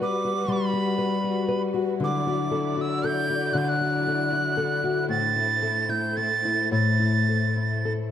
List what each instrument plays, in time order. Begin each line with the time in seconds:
Already playing: nylon-string guitar G3 F#4, string section G3 F#4 B4
0.02 nylon-string guitar B4, tin whistle D6
0.25 nylon-string guitar F#4
0.48 nylon-string guitar G3, tin whistle B5
0.73 nylon-string guitar F#4
0.98 nylon-string guitar B4
1.24 nylon-string guitar F#4
1.48 nylon-string guitar B4
1.74 nylon-string guitar F#4
2.00 nylon-string guitar D3, string section F#3 E4 D5
2.04 tin whistle D6
2.27 nylon-string guitar F#4
2.51 nylon-string guitar A4
2.77 nylon-string guitar F#4
2.81 tin whistle E6
3.04 nylon-string guitar A4, tin whistle G6
3.30 nylon-string guitar F#4
3.53 nylon-string guitar D3, tin whistle F#6
3.57 tin whistle G6
3.69 tin whistle F#6
3.81 nylon-string guitar F#4
4.07 nylon-string guitar A4
4.32 nylon-string guitar F#4
4.57 nylon-string guitar A4
4.84 nylon-string guitar F#4
5.07 nylon-string guitar A2, string section A3 C5, tin whistle A6
5.36 nylon-string guitar E4
5.63 nylon-string guitar A4
5.89 nylon-string guitar E4, tin whistle G6
6.17 nylon-string guitar A4, tin whistle A6
6.45 nylon-string guitar E4
6.72 nylon-string guitar A2, tin whistle A6
7.00 nylon-string guitar E4
7.29 nylon-string guitar A4
7.57 nylon-string guitar E4
7.85 nylon-string guitar A4